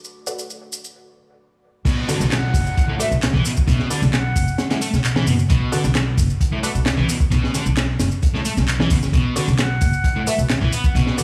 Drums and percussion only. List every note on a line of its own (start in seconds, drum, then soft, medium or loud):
0.04 shaker soft
0.27 shaker medium
0.39 shaker soft
0.50 shaker soft
0.72 shaker medium
0.84 shaker soft
1.85 kick loud
1.85 closed hi-hat medium
1.85 crash medium
1.85 shaker soft
2.09 snare soft
2.09 closed hi-hat medium
2.09 open hi-hat medium
2.09 shaker medium
2.21 snare soft
2.21 shaker soft
2.32 snare loud
2.32 clap loud
2.32 closed hi-hat medium
2.32 shaker soft
2.54 kick loud
2.54 closed hi-hat medium
2.54 open hi-hat medium
2.54 shaker medium
2.66 shaker soft
2.77 kick loud
2.77 closed hi-hat medium
2.77 shaker soft
3.00 closed hi-hat medium
3.00 open hi-hat medium
3.00 shaker medium
3.12 shaker soft
3.22 snare loud
3.22 clap loud
3.22 closed hi-hat medium
3.22 shaker soft
3.34 snare soft
3.45 closed hi-hat medium
3.45 open hi-hat medium
3.45 shaker medium
3.57 kick medium
3.57 shaker soft
3.68 kick loud
3.68 closed hi-hat medium
3.68 shaker soft
3.79 snare medium
3.91 snare soft
3.91 closed hi-hat medium
3.91 open hi-hat medium
3.91 shaker medium
4.02 snare soft
4.02 shaker soft
4.13 snare loud
4.13 clap loud
4.13 closed hi-hat medium
4.13 shaker soft
4.36 kick medium
4.36 closed hi-hat medium
4.36 open hi-hat medium
4.36 shaker medium
4.48 shaker soft
4.58 snare loud
4.58 closed hi-hat medium
4.58 shaker soft
4.70 snare loud
4.70 closed hi-hat medium
4.82 closed hi-hat medium
4.82 open hi-hat medium
4.82 shaker medium
4.94 snare medium
4.94 shaker soft
5.04 clap loud
5.04 closed hi-hat loud
5.04 shaker soft
5.16 snare loud
5.27 open hi-hat medium
5.27 shaker medium
5.39 shaker soft
5.50 kick loud
5.50 closed hi-hat medium
5.50 shaker soft
5.73 snare soft
5.73 closed hi-hat medium
5.73 open hi-hat medium
5.73 shaker medium
5.84 snare soft
5.84 shaker soft
5.95 snare loud
5.95 clap loud
5.95 closed hi-hat medium
5.95 shaker soft
6.17 kick medium
6.17 closed hi-hat medium
6.17 open hi-hat medium
6.17 shaker medium
6.30 shaker soft
6.41 kick medium
6.41 closed hi-hat medium
6.41 shaker soft
6.63 closed hi-hat medium
6.63 open hi-hat medium
6.63 shaker medium
6.75 shaker soft
6.86 snare loud
6.86 clap loud
6.86 closed hi-hat loud
6.86 shaker soft
6.98 snare soft
7.09 closed hi-hat medium
7.09 open hi-hat medium
7.09 shaker medium
7.20 kick medium
7.20 shaker soft
7.32 kick loud
7.32 closed hi-hat medium
7.32 shaker soft
7.44 snare medium
7.54 snare medium
7.54 closed hi-hat medium
7.54 open hi-hat medium
7.54 shaker medium
7.66 shaker soft
7.77 snare loud
7.77 clap loud
7.77 closed hi-hat medium
7.77 shaker soft
7.99 snare loud
7.99 closed hi-hat medium
7.99 open hi-hat medium
7.99 shaker medium
8.11 shaker soft
8.23 kick loud
8.23 closed hi-hat medium
8.23 shaker soft
8.35 snare soft
8.45 closed hi-hat medium
8.45 open hi-hat medium
8.45 shaker medium
8.57 snare medium
8.57 shaker soft
8.68 clap loud
8.68 closed hi-hat medium
8.68 shaker soft
8.80 snare loud
8.90 kick medium
8.90 closed hi-hat medium
8.90 open hi-hat medium
8.90 shaker medium
9.03 snare medium
9.03 shaker soft
9.13 kick loud
9.13 closed hi-hat medium
9.13 shaker soft
9.36 snare soft
9.36 closed hi-hat medium
9.36 open hi-hat medium
9.36 shaker medium
9.48 snare soft
9.48 shaker soft
9.58 snare loud
9.58 clap loud
9.58 closed hi-hat medium
9.58 shaker soft
9.81 kick loud
9.81 closed hi-hat medium
9.81 open hi-hat medium
9.81 shaker medium
9.93 shaker soft
10.04 kick loud
10.04 closed hi-hat medium
10.04 shaker soft
10.27 closed hi-hat medium
10.27 open hi-hat medium
10.27 shaker medium
10.39 shaker soft
10.49 snare loud
10.49 clap loud
10.49 closed hi-hat medium
10.49 shaker soft
10.61 snare soft
10.73 closed hi-hat medium
10.73 open hi-hat medium
10.73 shaker medium
10.84 kick loud
10.84 shaker soft
10.95 kick loud
10.95 closed hi-hat medium
10.95 shaker soft
11.06 snare medium
11.18 snare soft
11.18 closed hi-hat medium
11.18 open hi-hat medium
11.18 shaker medium